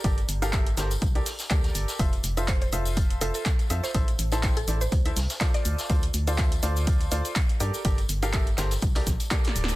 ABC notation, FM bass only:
X:1
M:4/4
L:1/8
Q:"Swing 16ths" 1/4=123
K:Gdor
V:1 name="FM bass" clef=bass
G,,, G,,,2 G,,, C,, z D,, G,,, | F,,, F,,,2 F,,,2 F,,, z F,, | A,,, A,,,2 A,,, D,, C,, z D,, | D,, D,,2 D,,2 D,, z G,, |
G,,, G,,,2 G,,, C,, B,,, z D,,, |]